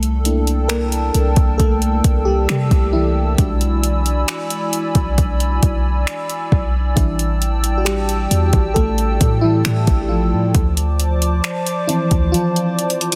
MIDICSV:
0, 0, Header, 1, 5, 480
1, 0, Start_track
1, 0, Key_signature, -1, "minor"
1, 0, Tempo, 895522
1, 1814, Time_signature, 4, 2, 24, 8
1, 7050, End_track
2, 0, Start_track
2, 0, Title_t, "Analog synth pad"
2, 0, Program_c, 0, 89
2, 0, Note_on_c, 0, 74, 78
2, 0, Note_on_c, 0, 79, 70
2, 0, Note_on_c, 0, 81, 76
2, 0, Note_on_c, 0, 88, 86
2, 1796, Note_off_c, 0, 79, 0
2, 1796, Note_off_c, 0, 81, 0
2, 1815, Note_on_c, 0, 83, 71
2, 1816, Note_on_c, 0, 80, 70
2, 3713, Note_off_c, 0, 88, 0
2, 3715, Note_off_c, 0, 83, 0
2, 3716, Note_off_c, 0, 80, 0
2, 3735, Note_on_c, 0, 79, 74
2, 3736, Note_on_c, 0, 81, 69
2, 3736, Note_on_c, 0, 88, 85
2, 5634, Note_off_c, 0, 74, 0
2, 5636, Note_off_c, 0, 79, 0
2, 5636, Note_off_c, 0, 81, 0
2, 5636, Note_off_c, 0, 88, 0
2, 5651, Note_on_c, 0, 86, 88
2, 5652, Note_on_c, 0, 72, 79
2, 5652, Note_on_c, 0, 81, 72
2, 5653, Note_on_c, 0, 74, 70
2, 7050, Note_off_c, 0, 72, 0
2, 7050, Note_off_c, 0, 74, 0
2, 7050, Note_off_c, 0, 81, 0
2, 7050, Note_off_c, 0, 86, 0
2, 7050, End_track
3, 0, Start_track
3, 0, Title_t, "FM electric piano"
3, 0, Program_c, 1, 5
3, 0, Control_c, 1, 64, 127
3, 0, Note_on_c, 1, 57, 80
3, 0, Note_on_c, 1, 69, 101
3, 124, Note_off_c, 1, 57, 0
3, 131, Note_on_c, 1, 57, 54
3, 133, Note_on_c, 1, 58, 46
3, 136, Note_on_c, 1, 62, 50
3, 137, Note_on_c, 1, 64, 57
3, 366, Note_on_c, 1, 70, 98
3, 372, Note_off_c, 1, 58, 0
3, 378, Note_on_c, 1, 58, 82
3, 384, Note_off_c, 1, 69, 0
3, 452, Note_off_c, 1, 57, 0
3, 454, Note_off_c, 1, 62, 0
3, 455, Note_off_c, 1, 64, 0
3, 835, Note_off_c, 1, 58, 0
3, 846, Note_on_c, 1, 69, 99
3, 857, Note_on_c, 1, 57, 76
3, 865, Note_off_c, 1, 70, 0
3, 1189, Note_off_c, 1, 69, 0
3, 1194, Note_off_c, 1, 57, 0
3, 1207, Note_on_c, 1, 67, 95
3, 1218, Note_on_c, 1, 55, 76
3, 1555, Note_off_c, 1, 55, 0
3, 1569, Note_on_c, 1, 64, 79
3, 1579, Note_on_c, 1, 52, 59
3, 1581, Note_off_c, 1, 67, 0
3, 1813, Note_on_c, 1, 56, 54
3, 1816, Note_on_c, 1, 62, 51
3, 1819, Note_on_c, 1, 66, 60
3, 1822, Control_c, 1, 64, 0
3, 1900, Control_c, 1, 64, 127
3, 2512, Note_off_c, 1, 56, 0
3, 2514, Note_off_c, 1, 62, 0
3, 2515, Note_off_c, 1, 66, 0
3, 2990, Note_off_c, 1, 64, 0
3, 2995, Note_off_c, 1, 52, 0
3, 3730, Note_on_c, 1, 64, 83
3, 3733, Note_on_c, 1, 55, 54
3, 3736, Note_on_c, 1, 62, 51
3, 3738, Note_off_c, 1, 64, 0
3, 3738, Note_on_c, 1, 64, 64
3, 3740, Note_on_c, 1, 52, 68
3, 3742, Control_c, 1, 64, 0
3, 3822, Control_c, 1, 64, 127
3, 4053, Note_off_c, 1, 55, 0
3, 4054, Note_off_c, 1, 62, 0
3, 4056, Note_off_c, 1, 64, 0
3, 4158, Note_off_c, 1, 52, 0
3, 4168, Note_on_c, 1, 66, 68
3, 4208, Note_on_c, 1, 67, 99
3, 4210, Note_off_c, 1, 66, 0
3, 4218, Note_on_c, 1, 55, 76
3, 4670, Note_off_c, 1, 67, 0
3, 4675, Note_off_c, 1, 55, 0
3, 4686, Note_on_c, 1, 69, 102
3, 4698, Note_on_c, 1, 57, 82
3, 5035, Note_off_c, 1, 57, 0
3, 5045, Note_on_c, 1, 64, 89
3, 5058, Note_on_c, 1, 52, 72
3, 5061, Note_off_c, 1, 69, 0
3, 5357, Note_off_c, 1, 52, 0
3, 5369, Note_on_c, 1, 67, 57
3, 5382, Note_off_c, 1, 64, 0
3, 5407, Note_on_c, 1, 65, 75
3, 5410, Note_off_c, 1, 67, 0
3, 5419, Note_on_c, 1, 53, 66
3, 5660, Control_c, 1, 64, 0
3, 5748, Control_c, 1, 64, 127
3, 6109, Note_off_c, 1, 65, 0
3, 6115, Note_off_c, 1, 53, 0
3, 6364, Note_on_c, 1, 64, 91
3, 6369, Note_on_c, 1, 53, 52
3, 6372, Note_on_c, 1, 60, 48
3, 6375, Note_off_c, 1, 64, 0
3, 6376, Note_on_c, 1, 64, 57
3, 6377, Note_on_c, 1, 52, 69
3, 6599, Note_off_c, 1, 52, 0
3, 6603, Note_on_c, 1, 65, 101
3, 6609, Note_off_c, 1, 53, 0
3, 6615, Note_on_c, 1, 53, 78
3, 6692, Note_off_c, 1, 60, 0
3, 6694, Note_off_c, 1, 64, 0
3, 7050, Note_off_c, 1, 53, 0
3, 7050, Note_off_c, 1, 65, 0
3, 7050, End_track
4, 0, Start_track
4, 0, Title_t, "808-style bass"
4, 0, Program_c, 2, 38
4, 0, Note_on_c, 2, 36, 110
4, 592, Note_off_c, 2, 36, 0
4, 615, Note_on_c, 2, 36, 102
4, 730, Note_off_c, 2, 36, 0
4, 733, Note_on_c, 2, 36, 108
4, 1079, Note_off_c, 2, 36, 0
4, 1096, Note_on_c, 2, 36, 94
4, 1325, Note_off_c, 2, 36, 0
4, 1336, Note_on_c, 2, 48, 98
4, 1451, Note_off_c, 2, 48, 0
4, 1453, Note_on_c, 2, 36, 99
4, 1799, Note_off_c, 2, 36, 0
4, 1814, Note_on_c, 2, 35, 101
4, 2275, Note_off_c, 2, 35, 0
4, 2654, Note_on_c, 2, 35, 102
4, 3000, Note_off_c, 2, 35, 0
4, 3015, Note_on_c, 2, 35, 99
4, 3245, Note_off_c, 2, 35, 0
4, 3495, Note_on_c, 2, 35, 96
4, 3725, Note_off_c, 2, 35, 0
4, 3734, Note_on_c, 2, 33, 105
4, 4433, Note_off_c, 2, 33, 0
4, 4455, Note_on_c, 2, 40, 103
4, 4570, Note_off_c, 2, 40, 0
4, 4573, Note_on_c, 2, 33, 103
4, 4689, Note_off_c, 2, 33, 0
4, 4696, Note_on_c, 2, 33, 101
4, 4926, Note_off_c, 2, 33, 0
4, 4936, Note_on_c, 2, 45, 100
4, 5166, Note_off_c, 2, 45, 0
4, 5176, Note_on_c, 2, 45, 98
4, 5290, Note_off_c, 2, 45, 0
4, 5293, Note_on_c, 2, 33, 108
4, 5534, Note_on_c, 2, 45, 90
4, 5542, Note_off_c, 2, 33, 0
4, 5648, Note_off_c, 2, 45, 0
4, 5653, Note_on_c, 2, 38, 104
4, 6115, Note_off_c, 2, 38, 0
4, 6492, Note_on_c, 2, 38, 111
4, 6613, Note_off_c, 2, 38, 0
4, 7050, End_track
5, 0, Start_track
5, 0, Title_t, "Drums"
5, 14, Note_on_c, 9, 42, 50
5, 68, Note_off_c, 9, 42, 0
5, 135, Note_on_c, 9, 42, 55
5, 188, Note_off_c, 9, 42, 0
5, 253, Note_on_c, 9, 42, 48
5, 307, Note_off_c, 9, 42, 0
5, 372, Note_on_c, 9, 42, 63
5, 373, Note_on_c, 9, 26, 110
5, 425, Note_off_c, 9, 42, 0
5, 427, Note_off_c, 9, 26, 0
5, 494, Note_on_c, 9, 42, 50
5, 548, Note_off_c, 9, 42, 0
5, 613, Note_on_c, 9, 42, 63
5, 667, Note_off_c, 9, 42, 0
5, 731, Note_on_c, 9, 42, 44
5, 733, Note_on_c, 9, 36, 84
5, 784, Note_off_c, 9, 42, 0
5, 786, Note_off_c, 9, 36, 0
5, 855, Note_on_c, 9, 36, 91
5, 855, Note_on_c, 9, 42, 62
5, 909, Note_off_c, 9, 36, 0
5, 909, Note_off_c, 9, 42, 0
5, 974, Note_on_c, 9, 42, 44
5, 1028, Note_off_c, 9, 42, 0
5, 1095, Note_on_c, 9, 36, 92
5, 1095, Note_on_c, 9, 42, 71
5, 1149, Note_off_c, 9, 36, 0
5, 1149, Note_off_c, 9, 42, 0
5, 1334, Note_on_c, 9, 26, 98
5, 1334, Note_on_c, 9, 42, 62
5, 1387, Note_off_c, 9, 26, 0
5, 1387, Note_off_c, 9, 42, 0
5, 1454, Note_on_c, 9, 36, 90
5, 1454, Note_on_c, 9, 42, 46
5, 1507, Note_off_c, 9, 36, 0
5, 1507, Note_off_c, 9, 42, 0
5, 1814, Note_on_c, 9, 36, 104
5, 1814, Note_on_c, 9, 42, 67
5, 1867, Note_off_c, 9, 42, 0
5, 1868, Note_off_c, 9, 36, 0
5, 1934, Note_on_c, 9, 42, 51
5, 1988, Note_off_c, 9, 42, 0
5, 2055, Note_on_c, 9, 42, 59
5, 2109, Note_off_c, 9, 42, 0
5, 2175, Note_on_c, 9, 42, 49
5, 2228, Note_off_c, 9, 42, 0
5, 2294, Note_on_c, 9, 42, 58
5, 2296, Note_on_c, 9, 26, 110
5, 2348, Note_off_c, 9, 42, 0
5, 2349, Note_off_c, 9, 26, 0
5, 2414, Note_on_c, 9, 42, 49
5, 2468, Note_off_c, 9, 42, 0
5, 2535, Note_on_c, 9, 42, 63
5, 2588, Note_off_c, 9, 42, 0
5, 2653, Note_on_c, 9, 42, 43
5, 2654, Note_on_c, 9, 36, 89
5, 2706, Note_off_c, 9, 42, 0
5, 2708, Note_off_c, 9, 36, 0
5, 2776, Note_on_c, 9, 36, 88
5, 2776, Note_on_c, 9, 42, 66
5, 2830, Note_off_c, 9, 36, 0
5, 2830, Note_off_c, 9, 42, 0
5, 2896, Note_on_c, 9, 42, 42
5, 2950, Note_off_c, 9, 42, 0
5, 3016, Note_on_c, 9, 36, 91
5, 3016, Note_on_c, 9, 42, 70
5, 3069, Note_off_c, 9, 42, 0
5, 3070, Note_off_c, 9, 36, 0
5, 3254, Note_on_c, 9, 26, 99
5, 3254, Note_on_c, 9, 42, 63
5, 3308, Note_off_c, 9, 26, 0
5, 3308, Note_off_c, 9, 42, 0
5, 3374, Note_on_c, 9, 42, 45
5, 3428, Note_off_c, 9, 42, 0
5, 3495, Note_on_c, 9, 36, 87
5, 3548, Note_off_c, 9, 36, 0
5, 3734, Note_on_c, 9, 36, 101
5, 3734, Note_on_c, 9, 42, 67
5, 3788, Note_off_c, 9, 36, 0
5, 3788, Note_off_c, 9, 42, 0
5, 3855, Note_on_c, 9, 42, 50
5, 3909, Note_off_c, 9, 42, 0
5, 3975, Note_on_c, 9, 42, 57
5, 4029, Note_off_c, 9, 42, 0
5, 4094, Note_on_c, 9, 42, 51
5, 4147, Note_off_c, 9, 42, 0
5, 4213, Note_on_c, 9, 42, 61
5, 4214, Note_on_c, 9, 26, 114
5, 4266, Note_off_c, 9, 42, 0
5, 4268, Note_off_c, 9, 26, 0
5, 4335, Note_on_c, 9, 42, 50
5, 4389, Note_off_c, 9, 42, 0
5, 4455, Note_on_c, 9, 42, 65
5, 4508, Note_off_c, 9, 42, 0
5, 4571, Note_on_c, 9, 42, 45
5, 4573, Note_on_c, 9, 36, 91
5, 4625, Note_off_c, 9, 42, 0
5, 4627, Note_off_c, 9, 36, 0
5, 4695, Note_on_c, 9, 36, 89
5, 4695, Note_on_c, 9, 42, 62
5, 4749, Note_off_c, 9, 36, 0
5, 4749, Note_off_c, 9, 42, 0
5, 4813, Note_on_c, 9, 42, 42
5, 4867, Note_off_c, 9, 42, 0
5, 4935, Note_on_c, 9, 36, 88
5, 4935, Note_on_c, 9, 42, 73
5, 4989, Note_off_c, 9, 36, 0
5, 4989, Note_off_c, 9, 42, 0
5, 5172, Note_on_c, 9, 26, 99
5, 5172, Note_on_c, 9, 42, 68
5, 5225, Note_off_c, 9, 26, 0
5, 5225, Note_off_c, 9, 42, 0
5, 5292, Note_on_c, 9, 42, 46
5, 5293, Note_on_c, 9, 36, 97
5, 5345, Note_off_c, 9, 42, 0
5, 5347, Note_off_c, 9, 36, 0
5, 5652, Note_on_c, 9, 42, 70
5, 5653, Note_on_c, 9, 36, 104
5, 5706, Note_off_c, 9, 42, 0
5, 5707, Note_off_c, 9, 36, 0
5, 5773, Note_on_c, 9, 42, 50
5, 5827, Note_off_c, 9, 42, 0
5, 5893, Note_on_c, 9, 42, 57
5, 5947, Note_off_c, 9, 42, 0
5, 6013, Note_on_c, 9, 42, 49
5, 6067, Note_off_c, 9, 42, 0
5, 6131, Note_on_c, 9, 42, 60
5, 6133, Note_on_c, 9, 26, 109
5, 6185, Note_off_c, 9, 42, 0
5, 6186, Note_off_c, 9, 26, 0
5, 6252, Note_on_c, 9, 42, 49
5, 6306, Note_off_c, 9, 42, 0
5, 6372, Note_on_c, 9, 42, 65
5, 6426, Note_off_c, 9, 42, 0
5, 6491, Note_on_c, 9, 42, 46
5, 6493, Note_on_c, 9, 36, 89
5, 6545, Note_off_c, 9, 42, 0
5, 6546, Note_off_c, 9, 36, 0
5, 6615, Note_on_c, 9, 42, 62
5, 6669, Note_off_c, 9, 42, 0
5, 6734, Note_on_c, 9, 42, 42
5, 6787, Note_off_c, 9, 42, 0
5, 6853, Note_on_c, 9, 42, 42
5, 6907, Note_off_c, 9, 42, 0
5, 6914, Note_on_c, 9, 42, 50
5, 6968, Note_off_c, 9, 42, 0
5, 6974, Note_on_c, 9, 42, 58
5, 7028, Note_off_c, 9, 42, 0
5, 7033, Note_on_c, 9, 42, 72
5, 7050, Note_off_c, 9, 42, 0
5, 7050, End_track
0, 0, End_of_file